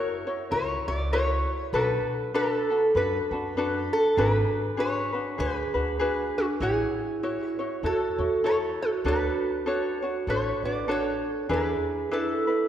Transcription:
0.00 0.26 E4 medium
0.00 0.26 F#4 medium
0.00 0.26 A#4 medium
0.00 0.55 A#4 medium
0.00 0.26 C#5 medium
0.27 0.51 E4 soft
0.27 0.51 F#4 medium
0.27 0.51 C#5 medium
0.51 0.75 C#2 medium
0.51 0.87 E4 medium
0.51 0.87 F#4 medium
0.51 0.87 A#4 medium
0.51 0.87 C#5 loud
0.51 0.88 C#5 medium
0.88 1.43 C#2 medium
0.88 1.12 E4 soft
0.88 1.12 F#4 soft
0.88 1.13 D5 medium
1.13 1.74 E4 medium
1.13 1.74 F#4 medium
1.13 1.73 A#4 medium
1.13 1.70 C#5 medium
1.13 1.73 C#5 medium
1.73 1.96 B1 loud
1.73 2.34 D4 medium
1.73 2.35 F#4 medium
1.73 2.34 A4 medium
1.73 2.34 B4 medium
1.73 2.30 B4 medium
2.34 2.70 D4 medium
2.34 2.70 F#4 medium
2.34 2.69 A4 medium
2.34 2.97 A4 loud
2.34 2.70 B4 medium
2.70 2.95 D4 soft
2.70 2.96 F#4 soft
2.70 2.95 A4 soft
2.95 3.18 F#2 medium
2.95 3.32 D4 medium
2.95 3.31 F#4 medium
2.95 3.31 A4 medium
2.95 3.31 B4 medium
2.95 3.93 B4 medium
3.31 3.87 F#2 medium
3.31 3.56 D4 soft
3.31 3.57 F#4 soft
3.31 3.57 A4 soft
3.57 4.18 D4 medium
3.57 4.18 F#4 medium
3.57 4.17 A4 medium
3.57 4.19 B4 medium
3.93 4.18 A4 loud
4.17 4.40 G#1 loud
4.17 4.77 D4 medium
4.17 4.79 F#4 medium
4.17 4.76 G#4 medium
4.17 4.80 B4 medium
4.17 4.78 B4 medium
4.77 5.14 D4 medium
4.77 5.13 F#4 medium
4.77 5.13 G#4 medium
4.77 5.11 B4 medium
4.77 5.39 C#5 medium
5.13 5.37 D4 soft
5.13 5.39 F#4 soft
5.13 5.38 B4 soft
5.38 5.62 D2 loud
5.38 5.75 D4 medium
5.38 5.74 F#4 medium
5.38 5.74 G#4 medium
5.38 6.32 G#4 medium
5.38 6.32 B4 loud
5.38 5.73 B4 medium
5.74 6.31 D2 medium
5.74 5.99 D4 soft
5.74 6.00 F#4 soft
5.74 6.00 B4 medium
5.99 6.61 D4 medium
5.99 6.60 F#4 medium
5.99 6.61 G#4 medium
5.99 6.61 B4 medium
6.37 6.48 D4 medium
6.37 6.45 F#4 medium
6.60 6.84 A1 loud
6.60 7.22 E4 medium
6.60 7.79 E4 medium
6.60 7.23 F#4 medium
6.60 7.48 G#4 medium
6.60 7.24 C#5 medium
7.23 7.58 E4 medium
7.23 7.59 F#4 medium
7.23 7.58 C#5 medium
7.48 7.86 F#4 medium
7.59 7.83 E4 soft
7.59 7.83 F#4 medium
7.59 7.83 C#5 medium
7.83 8.06 E2 medium
7.83 8.19 E4 medium
7.83 8.18 F#4 medium
7.83 8.41 F#4 medium
7.83 8.19 A4 medium
7.83 8.47 A4 medium
7.83 8.17 C#5 medium
8.18 8.75 E2 medium
8.18 8.43 E4 soft
8.18 8.44 F#4 soft
8.18 8.44 C#5 soft
8.44 9.05 E4 medium
8.44 9.05 F#4 medium
8.44 9.05 A4 medium
8.44 8.61 A4 medium
8.44 9.05 C#5 medium
8.44 8.56 C#5 medium
8.82 8.93 F#4 medium
8.82 8.89 A4 medium
9.04 9.28 D2 loud
9.04 9.66 D4 medium
9.04 10.23 F#4 medium
9.04 9.66 F#4 medium
9.04 9.65 A4 medium
9.04 10.29 B4 medium
9.04 9.66 C#5 medium
9.66 10.02 D4 medium
9.66 10.02 F#4 medium
9.66 10.02 A4 medium
9.66 10.01 C#5 medium
10.02 10.28 D4 soft
10.02 10.28 F#4 medium
10.02 10.27 C#5 medium
10.27 10.50 A1 medium
10.27 10.64 D4 medium
10.27 10.64 F#4 medium
10.27 10.61 A4 medium
10.27 10.64 A4 medium
10.27 10.65 C#5 medium
10.63 11.19 A1 medium
10.63 10.87 D4 soft
10.63 10.88 F#4 soft
10.63 10.87 B4 medium
10.63 10.88 D5 medium
10.88 11.49 D4 medium
10.88 11.50 F#4 medium
10.88 11.49 A4 medium
10.88 11.46 A4 medium
10.88 11.50 C#5 medium
10.88 11.53 C#5 medium
11.49 11.73 E2 loud
11.49 12.10 D4 medium
11.49 12.11 E4 medium
11.49 12.14 G#4 medium
11.49 12.07 G#4 medium
11.49 12.11 B4 medium
11.53 12.14 B4 medium
12.11 12.47 D4 medium
12.11 12.47 E4 medium
12.11 12.68 E4 medium
12.11 12.68 A4 medium
12.11 12.46 B4 medium
12.47 12.68 D4 soft
12.47 12.68 E4 soft
12.47 12.68 B4 soft

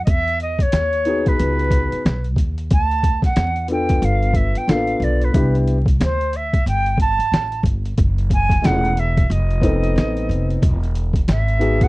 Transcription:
0.04 0.70 E2 loud
0.04 0.11 D#5 medium
0.04 kick loud
0.04 closed hi-hat medium
0.10 0.41 E5 loud
0.28 closed hi-hat soft
0.40 0.63 D#5 loud
0.40 closed hi-hat medium
0.59 1.29 C#5 loud
0.59 kick medium
0.59 closed hi-hat medium
0.72 1.36 D#2 medium
0.72 snare loud
0.72 closed hi-hat loud
0.93 closed hi-hat soft
1.05 1.99 B3 medium
1.05 2.00 D#4 medium
1.05 2.00 F#4 medium
1.05 2.01 G#4 medium
1.05 closed hi-hat medium
1.26 2.26 B4 medium
1.26 kick loud
1.26 closed hi-hat medium
1.39 1.90 C#2 loud
1.39 closed hi-hat medium
1.59 closed hi-hat soft
1.70 kick medium
1.70 closed hi-hat medium
1.92 muted upright bass stroke soft
1.92 closed hi-hat medium
2.05 2.37 B1 medium
2.05 snare loud
2.05 closed hi-hat medium
2.24 closed hi-hat soft
2.36 2.69 D#2 medium
2.36 kick medium
2.36 closed hi-hat medium
2.58 closed hi-hat soft
2.71 3.34 D2 medium
2.71 3.21 A5 loud
2.71 kick loud
2.71 closed hi-hat medium
2.91 closed hi-hat soft
3.03 kick medium
3.03 closed hi-hat medium
3.22 3.67 F#5 loud
3.22 kick medium
3.22 snare soft
3.22 closed hi-hat medium
3.36 3.99 E2 loud
3.36 snare loud
3.36 closed hi-hat loud
3.56 closed hi-hat soft
3.68 4.63 B3 medium
3.68 4.63 D4 medium
3.68 4.64 F4 medium
3.68 4.64 A4 medium
3.68 closed hi-hat medium
3.72 4.06 G5 medium
3.89 kick medium
3.89 closed hi-hat medium
4.02 4.53 G1 loud
4.02 4.37 F5 loud
4.02 closed hi-hat medium
4.23 closed hi-hat soft
4.34 4.59 E5 medium
4.34 kick medium
4.34 closed hi-hat medium
4.55 4.72 G5 medium
4.55 muted upright bass stroke soft
4.55 closed hi-hat medium
4.67 4.99 A1 medium
4.67 4.76 A#3 medium
4.67 5.32 D4 medium
4.67 5.35 F4 medium
4.67 5.35 A4 medium
4.67 5.05 F5 medium
4.67 snare loud
4.67 closed hi-hat medium
4.74 5.31 B3 medium
4.87 closed hi-hat soft
5.00 5.32 B1 medium
5.00 5.26 D5 medium
5.00 closed hi-hat medium
5.22 5.56 B4 medium
5.22 closed hi-hat soft
5.33 5.97 C2 loud
5.33 5.75 B3 medium
5.33 5.75 D4 medium
5.33 5.76 E4 medium
5.33 5.76 G4 medium
5.33 kick loud
5.33 closed hi-hat medium
5.55 closed hi-hat soft
5.68 closed hi-hat medium
5.86 kick loud
5.86 closed hi-hat medium
6.00 6.63 D2 medium
6.00 6.37 C5 medium
6.00 snare loud
6.00 closed hi-hat loud
6.21 closed hi-hat soft
6.33 6.67 E5 medium
6.33 closed hi-hat medium
6.53 kick loud
6.53 closed hi-hat medium
6.66 7.17 G1 medium
6.66 6.98 G5 loud
6.66 closed hi-hat medium
6.86 closed hi-hat soft
6.98 7.62 A5 loud
6.98 kick medium
6.98 closed hi-hat medium
7.19 muted upright bass stroke soft
7.19 closed hi-hat medium
7.32 7.63 A1 medium
7.32 snare loud
7.32 closed hi-hat medium
7.52 closed hi-hat soft
7.63 7.96 G1 medium
7.63 kick medium
7.63 closed hi-hat medium
7.86 closed hi-hat soft
7.98 8.61 F#1 loud
7.98 kick loud
7.98 closed hi-hat medium
8.18 closed hi-hat soft
8.30 8.67 G#5 loud
8.30 kick medium
8.30 closed hi-hat medium
8.49 kick medium
8.49 snare soft
8.49 closed hi-hat medium
8.62 9.27 E1 loud
8.62 8.88 A3 medium
8.62 8.89 C#4 medium
8.62 8.89 E4 medium
8.62 8.90 G#4 medium
8.62 9.01 F#5 loud
8.62 snare loud
8.62 closed hi-hat loud
8.85 closed hi-hat soft
8.97 9.33 E5 loud
8.97 closed hi-hat medium
9.17 kick loud
9.17 closed hi-hat medium
9.30 9.93 F1 loud
9.30 10.96 D#5 medium
9.30 closed hi-hat medium
9.51 closed hi-hat soft
9.61 10.56 B3 medium
9.61 10.57 C4 medium
9.61 10.57 D#4 medium
9.61 10.57 A4 medium
9.61 kick medium
9.61 closed hi-hat medium
9.84 closed hi-hat medium
9.96 10.27 A1 loud
9.96 snare loud
9.96 closed hi-hat medium
10.17 closed hi-hat soft
10.29 10.60 F1 loud
10.29 closed hi-hat medium
10.50 closed hi-hat soft
10.62 11.25 E1 loud
10.62 kick loud
10.62 closed hi-hat medium
10.83 closed hi-hat soft
10.95 closed hi-hat medium
11.13 kick loud
11.13 closed hi-hat medium
11.28 11.88 G#1 loud
11.28 11.85 E5 medium
11.28 snare loud
11.28 closed hi-hat loud
11.48 closed hi-hat soft
11.59 11.85 B3 medium
11.59 11.86 D#4 medium
11.59 11.86 F#4 medium
11.59 11.86 G#4 medium
11.59 closed hi-hat medium
11.81 11.88 F#5 medium
11.81 kick loud
11.81 closed hi-hat medium

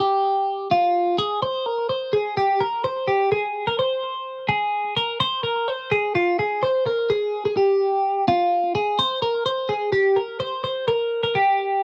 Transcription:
0.00 0.67 G4 medium
0.71 1.16 F4 medium
1.18 1.42 G#4 medium
1.42 1.66 C5 loud
1.66 1.89 A#4 medium
1.89 2.13 C5 medium
2.13 2.37 G#4 medium
2.37 2.61 G4 medium
2.61 2.84 A#4 medium
2.84 3.08 C5 medium
3.08 3.31 G4 medium
3.32 3.65 G#4 medium
3.67 3.79 A#4 medium
3.79 4.46 C5 medium
4.49 4.94 G#4 medium
4.96 5.20 A#4 medium
5.20 5.43 C5 loud
5.43 5.68 A#4 medium
5.68 5.92 C5 medium
5.91 6.15 G#4 medium
6.15 6.39 F4 medium
6.39 6.63 G#4 medium
6.63 6.86 C5 medium
6.86 7.10 A#4 medium
7.10 7.43 G#4 medium
7.45 7.57 G#4 medium
7.57 8.24 G4 medium
8.28 8.72 F4 medium
8.75 8.99 G#4 medium
8.99 9.22 C5 loud
9.22 9.46 A#4 medium
9.46 9.70 C5 medium
9.69 9.92 G#4 medium
9.93 10.17 G4 medium
10.16 10.39 A#4 medium
10.40 10.63 C5 medium
10.64 10.87 C5 medium
10.88 11.21 A#4 loud
11.23 11.35 A#4 medium
11.35 11.83 G4 medium

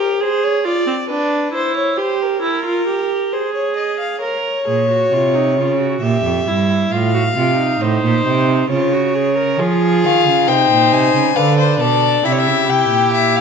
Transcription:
0.00 0.22 G4 medium
0.00 0.21 A#4 medium
0.20 0.66 G#4 medium
0.20 0.45 C5 medium
0.44 0.65 C#5 medium
0.65 0.86 F4 medium
0.65 1.09 D5 medium
0.87 0.95 C4 medium
1.09 1.52 D4 medium
1.09 1.53 B4 medium
1.53 1.99 E4 medium
1.53 1.76 C5 medium
1.77 1.98 C#5 medium
1.97 2.41 G4 medium
1.97 2.23 C5 medium
2.22 3.34 A#4 medium
2.42 2.64 E4 medium
2.65 2.87 F4 medium
2.87 3.34 G4 medium
3.32 4.21 G#4 medium
3.32 3.54 C5 medium
3.54 3.76 C#5 medium
3.76 3.99 D#5 medium
3.99 4.21 F5 medium
4.21 4.64 A#4 medium
4.21 5.97 C#5 medium
4.67 5.09 A#2 medium
4.67 4.89 G#4 medium
4.90 5.14 F#4 medium
5.12 5.59 C3 medium
5.12 5.36 F4 medium
5.35 5.57 D#4 medium
5.57 6.01 C#3 medium
5.57 5.79 F4 medium
5.80 6.04 F#4 medium
6.02 6.24 A#2 medium
6.02 6.49 G4 medium
6.02 6.93 E5 medium
6.24 6.46 F2 medium
6.46 6.90 G2 medium
6.46 6.94 E4 medium
6.91 7.35 A2 medium
6.91 7.13 F4 medium
6.91 7.82 F5 medium
7.14 7.22 F#4 medium
7.36 7.79 C3 medium
7.36 7.57 F4 medium
7.58 8.67 D#4 medium
7.81 8.02 A2 medium
7.81 8.70 C5 medium
8.03 8.25 A#2 medium
8.26 8.69 C3 medium
8.70 9.61 C#3 medium
8.70 8.94 F4 medium
8.70 9.61 C#5 medium
8.93 9.16 F#4 medium
9.15 9.37 G#4 medium
9.37 9.61 A#4 medium
9.59 10.05 F3 medium
9.59 10.49 F4 medium
9.59 10.49 G#4 medium
10.04 10.28 D#3 medium
10.04 10.49 F5 medium
10.26 10.50 C#3 medium
10.47 10.70 C3 medium
10.47 11.35 D#4 medium
10.47 11.37 C5 medium
10.47 10.94 G5 medium
10.70 10.93 A#2 medium
10.92 11.13 C3 medium
10.92 11.37 G#5 medium
11.15 11.35 C#3 medium
11.35 11.79 D3 medium
11.35 12.25 D4 medium
11.35 11.81 B4 medium
11.35 11.57 F5 medium
11.58 11.79 C5 medium
11.80 12.23 B2 medium
11.80 12.24 A4 medium
11.80 12.26 D5 medium
12.23 12.48 C3 medium
12.23 12.68 E4 medium
12.23 13.41 G4 medium
12.23 12.33 E5 medium
12.32 12.40 C#5 medium
12.38 12.71 E5 medium
12.46 12.70 C#3 medium
12.68 12.90 C3 medium
12.68 13.41 E4 medium
12.68 13.13 G5 medium
12.90 13.41 A#2 medium
13.14 13.37 E5 medium
13.36 13.41 F5 medium

